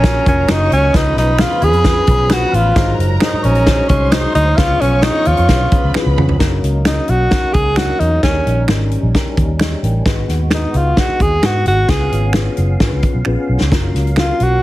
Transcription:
Already playing: A#1 F#3 A#3 C#4 A#4 F5 A#5 C#6
0.04 C#4 F4 F#4 A#4, kick, snare, closed hi-hat
0.26 F1 C#4 F4 F#4 A#4 C#6, kick, closed hi-hat
0.48 F#1 C#4 D#4 F4 F#4 A#4 C#5 C#6 D#6, finger snap, snare, closed hi-hat
0.70 C#2 C#4 C#6, closed hi-hat
0.93 C#3 F3 B3 C#4 D#4 F4 G#4 B4 B5 D#6, kick, snare, closed hi-hat
1.16 B1 D#4 D#6, snare, closed hi-hat
1.39 C#4 F4 G#4 B4 F6, finger snap, snare, closed hi-hat
1.62 D#2 G#4 G#6, closed hi-hat
1.73 F2, closed hi-hat
1.84 C#4 F4 G#4 B4, kick, snare, closed hi-hat
2.07 B1 C#4 F4 G#4 B4, kick, closed hi-hat
2.30 C#4 F4 F#4 G#4 A#4 F#6, finger snap, snare, closed hi-hat
2.36 B4
2.52 A1 F4 F6, closed hi-hat
2.75 G#2 F#3 G#3 D#4 F#4 G#4 A#4 C5 A#5, kick, snare, closed hi-hat
2.98 F#1, closed hi-hat
3.21 D#4 F#4 G#4 C5 D#6, finger snap, snare, closed hi-hat
3.33 muted fingered electric bass stroke
3.43 A#1 C#4 C#6, closed hi-hat
3.55 closed hi-hat
3.66 D#4 F#4 G#4 C5, kick, snare, closed hi-hat
3.88 C2 C#4 D#4 F#4 G#4 C5 C6 C#6, kick, closed hi-hat
4.11 D#4 F#4 G#4 C5 D#6, finger snap, snare, closed hi-hat
4.32 D2 D#4 D#6, closed hi-hat
4.55 C#2 C#3 F3 B3 C#4 F4 G#4 B4 C#5 C#6 F6, kick, snare, closed hi-hat
4.79 B1 C#4 C#6, closed hi-hat
5.02 C#4 D#4 F4 G#4 C#5 D#6, finger snap, snare, closed hi-hat
5.25 D#2 F4 F6, closed hi-hat
5.37 F2, closed hi-hat
5.49 B1 C#4 F4 G#4 B4, kick, snare, closed hi-hat
5.71 C#4 F4 G#4 B4 B5, muted fingered electric bass stroke, kick, closed hi-hat
5.84 C#2
5.94 C#4 E4 G#4 B4, finger snap, muted fingered electric bass stroke, snare
6.00 F4
6.06 C#2
6.18 C#3, mid tom
6.29 floor tom
6.39 F#1 F#3 A#3 C#4 D#4 F#4 A#4, kick, snare, closed hi-hat
6.63 C#2, closed hi-hat
6.85 C#4 D#4 F#4 G#4, finger snap, snare, closed hi-hat
6.91 A#4
7.08 B1 F#4, closed hi-hat
7.31 C#4 D#4 F#4 A#4, kick, snare, closed hi-hat
7.44 muted fingered electric bass stroke
7.53 C#2 G#4, kick, closed hi-hat
7.76 C#4 D#4 F#4 A#4, finger snap, snare, closed hi-hat
8.00 E2 D#4, closed hi-hat
8.23 D#2 D#3 G3 C#4 D#4 G4 G#4, kick, snare, closed hi-hat
8.29 A#4
8.46 A#1, closed hi-hat
8.68 G#1 C#4 D#4 G4 A#4, finger snap, snare, closed hi-hat
8.91 closed hi-hat
9.03 A#1
9.14 C#4 D#4 G4 A#4, kick, snare, closed hi-hat
9.26 muted fingered electric bass stroke
9.37 D#2, kick, closed hi-hat
9.59 G4 D#5, finger snap, snare, closed hi-hat
9.83 A1 A#4 G5, closed hi-hat
10.05 G#1 G#2 G#3 B3 D#4 F#4 G#4 B4, kick, snare, closed hi-hat
10.28 D#2, snare, closed hi-hat
10.51 D#4 F#4 G#4 B4, finger snap, snare, closed hi-hat
10.74 C#2 F4, closed hi-hat
10.97 D#4 F#4 G#4 B4, kick, snare, closed hi-hat
11.09 muted fingered electric bass stroke
11.20 D#2 G#4, kick, closed hi-hat
11.42 G#2 D#4 F#4 G#4 B4, finger snap, snare, closed hi-hat
11.65 G#1 F#4, closed hi-hat
11.88 C#2 C#3 C#4 F4 G#4 B4 F5, kick, snare, closed hi-hat
12.11 G#1, closed hi-hat
12.33 C#4 F4 G#4 B4, finger snap, snare, closed hi-hat
12.57 F#1, closed hi-hat
12.80 C#4 F4 G#4 A#4, kick, snare, closed hi-hat
12.87 B4
12.92 C#2
13.03 kick, closed hi-hat
13.14 B1
13.25 A#1 C#4 F4 G#4 B4, finger snap
13.49 B1
13.61 C#2, snare
13.71 F#3 A#3 C#4 F4 F#4 A#4, kick, snare, closed hi-hat
13.95 C#2, snare, closed hi-hat
14.07 closed hi-hat
14.16 C#4 F4 F#4 A4, finger snap, snare, closed hi-hat
14.23 A#4
14.40 B1 F#4, closed hi-hat

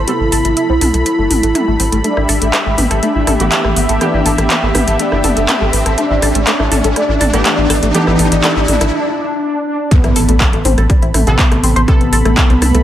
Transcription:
Already playing: E4 A4 B5, riser
0.08 C3 G3 B3 A4, closed hi-hat
0.20 A1
0.32 A1 A4, open hi-hat
0.45 A1 A3, closed hi-hat
0.57 E4, closed hi-hat
0.70 C2 C4
0.81 C2 A4, open hi-hat, mid tom
0.94 C2 A3, closed hi-hat
1.06 closed hi-hat
1.19 G1 A3
1.31 A1, open hi-hat, mid tom
1.43 A1 A3, closed hi-hat
1.55 E4, closed hi-hat, mid tom
1.68 A1 A3
1.80 A1 C4, open hi-hat
1.92 A1 A3, closed hi-hat
2.04 A3 D4 G4 E5, closed hi-hat
2.17 A1 E4, cross-stick
2.29 A1 A4, open hi-hat
2.42 A1 A3, closed hi-hat
2.54 cross-stick, clap, closed hi-hat
2.66 A1 A3
2.78 A1 B3, open hi-hat, mid tom
2.91 A1 A4, cross-stick, closed hi-hat
3.03 A3 D4, closed hi-hat
3.15 A1 E4
3.27 A1 A4, cross-stick, open hi-hat, mid tom
3.40 A1 E3 A3 B3 G4, closed hi-hat
3.52 clap, closed hi-hat
3.65 A1 A3, cross-stick
3.76 A1 B3, open hi-hat
3.89 A1 A4, closed hi-hat
4.01 E3 A3 B3 D4 G4, cross-stick, closed hi-hat
4.14 A1 E4
4.26 A1 A4, open hi-hat
4.38 A1 A3, cross-stick, closed hi-hat
4.50 clap, closed hi-hat
4.63 A1 A3
4.75 A1 B3, cross-stick, open hi-hat, mid tom
4.88 A1 A4, closed hi-hat
4.99 A3 D4, closed hi-hat
5.12 G1 E4, cross-stick
5.24 G1 A4, open hi-hat, mid tom
5.37 G1 A3, closed hi-hat
5.49 cross-stick, clap, closed hi-hat, mid tom
5.61 A1 A3
5.73 A1 B3, open hi-hat
5.86 A1 A4, cross-stick, closed hi-hat
5.98 A3 D4, closed hi-hat
6.10 A1 E4
6.22 A1 A4, cross-stick, open hi-hat
6.35 A1 A3, closed hi-hat
6.47 A3 D4, clap, closed hi-hat
6.60 A1 E4, cross-stick
6.71 A1 A4, open hi-hat, mid tom
6.84 A1 A3, closed hi-hat
6.96 A3 D4, cross-stick, closed hi-hat
7.09 A1 E4
7.21 A1 A4, open hi-hat, mid tom
7.33 A1 E3 A3 B3 G4, cross-stick, closed hi-hat
7.45 A3 D4, clap, closed hi-hat
7.58 A1 E4
7.70 A1 A4, cross-stick, open hi-hat
7.83 A1 A3, closed hi-hat
7.94 E3 A3 B3 D4 G4, closed hi-hat
8.07 A1 E4, cross-stick
8.19 A1 A3 D4, open hi-hat
8.32 A1 E4, closed hi-hat
8.44 A3 D4, cross-stick, clap, closed hi-hat
8.56 A1 E4
8.68 A1 A3 D4, open hi-hat, mid tom
8.81 A1 E4, cross-stick, closed hi-hat
8.93 D4
9.18 D4
9.42 D4
9.67 D4
9.91 A3 B3 A4 B5, kick, closed hi-hat, impact
10.04 A1 E4, cross-stick, closed hi-hat
10.16 A1 A4, open hi-hat
10.29 A1 A3, closed hi-hat
10.40 kick, cross-stick, clap, closed hi-hat
10.53 A1 A3, closed hi-hat
10.65 A1 C4, open hi-hat, mid tom
10.78 A1 A4, cross-stick, closed hi-hat
10.90 G3, kick, closed hi-hat
11.02 A1 E4, closed hi-hat
11.14 A1 A3, cross-stick, open hi-hat, mid tom
11.27 A1 C3 A3 B3 A4, closed hi-hat
11.39 B3 E4, kick, clap, closed hi-hat
11.51 A1 A3, cross-stick, closed hi-hat
11.63 A1 C4, open hi-hat
11.76 A1 C5, closed hi-hat
11.88 C3 G3 B3 A4, kick, cross-stick, closed hi-hat
12.01 A1, closed hi-hat
12.12 A1 A4, open hi-hat
12.25 A1 A3, cross-stick, closed hi-hat
12.37 E4, kick, clap, closed hi-hat
12.50 C2 C4, closed hi-hat
12.62 C2 A4, cross-stick, open hi-hat, mid tom
12.74 C2 A3, closed hi-hat

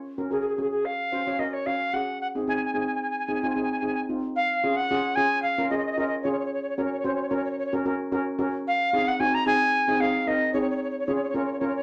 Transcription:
0.18 C#4 F#4 A#4
0.31 C#4 F#4 G#4 A#4
0.40 G#4
0.48 G#4
0.55 C#4 F#4 G#4
0.61 G#4
0.71 G#4
0.85 F5
1.12 C#4 F#4 C5
1.27 C#4 F#4 C#5
1.39 C#4 F#4 A#4 D#5
1.53 C#5
1.66 C#4 F#4 C#5 F5
1.93 C#4 F#4 G#4 F#5
2.21 F#5
2.35 C4 D#4 G#4
2.47 C4 D#4 G#4 G#5
2.56 G#5
2.65 G#5
2.73 C4 D#4 G#4 G#5
2.80 G#5
2.86 G#5
2.95 G#5
3.02 G#5
3.10 G#5
3.19 G#5
3.26 C4 D#4 G#4 G#5
3.34 G#5
3.42 C4 D#4 F4 G#5
3.50 G#5
3.55 C4 D#4 G#4 G#5
3.63 G#5
3.72 G#5
3.79 C4 D#4 G#4 G#5
3.86 G#5
3.94 G#5
4.09 C4 D#4 F4
4.36 F5
4.64 C#4 F4 G#4
4.76 F#5
4.91 C#4 F4 G#4
5.15 C#4 F4 G#4 G#5
5.42 F5
5.58 C#4 F4 A#4
5.70 C#4 F4 G#4 D#5
5.77 D#5
5.86 D#5
5.92 D#5
5.97 C#4 F4 A#4 D#5
6.07 D#5
6.22 C#4 F4 G#4 C#5
6.32 C#5
6.39 C#5
6.45 C#5
6.54 C#5
6.63 C#5
6.69 C#5
6.77 C#4 F#4 A#4 C#5
6.84 C#5
6.93 C#5
6.99 C#5
7.04 C#4 F#4 C5 C#5
7.15 C#5
7.22 C#5
7.29 C#4 F#4 A#4 C#5
7.36 C#5
7.45 C#5
7.51 C#5
7.59 C#5
7.66 C#5
7.73 C#4 F#4 A#4
7.85 C#4 F#4 A#4
8.12 C#4 F#4 A#4
8.39 C#4 F#4 A#4
8.67 F5
8.93 C4 D#4 G#4
9.08 F#5
9.19 C4 D#4 F#4 G#5
9.34 A#5
9.46 C4 D#4 G#4 G#5
9.88 C4 D#4 G#4
10.00 C4 D#4 G#4 F5
10.27 C4 D#4 A#4 D#5
10.53 C4 D#4 G#4 C#5
10.61 C#5
10.70 C#5
10.76 C#5
10.83 C#5
10.91 C#5
10.99 C#5
11.07 C#4 F4 G#4 C#5
11.16 C#5
11.24 C#5
11.29 C#5
11.34 C#4 F4 A#4 C#5
11.45 C#5
11.53 C#5
11.59 C#4 F4 A#4 C#5
11.68 C#5
11.76 C#5

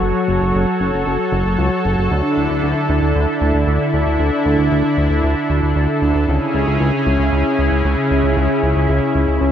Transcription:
Already playing: F#3 F#4 A4 C#5
0.02 F#1
0.28 F#1
0.41 F#1
0.55 F#1
0.80 F#1
0.93 F#1
1.06 F#1
1.32 F#1
1.45 F#1
1.59 C#2
1.85 F#1
1.98 F#1
2.11 D2 D3 D4 E4
2.37 D2
2.50 D2
2.63 D2
2.89 D2
3.02 D2
3.15 D2
3.41 D2
3.55 D2
3.67 D2
3.94 D2
4.07 D2
4.20 D2
4.46 D2
4.59 D2
4.72 D2
4.98 D2
5.10 D2
5.24 D2
5.50 D2
5.63 D2
5.76 D2
6.02 D2
6.15 D2
6.28 C#2 C#3 C#4 E4 G#4
6.54 C#2
6.67 C#2
6.80 C#2
7.07 C#2
7.20 C#2
7.33 C#2
7.59 C#2
7.72 C#2
7.85 C#2
8.11 C#2
8.24 C#2
8.37 C#2
8.63 C#2
8.76 C#2
8.89 C#2
9.15 C#2
9.28 C#2
9.41 C#2

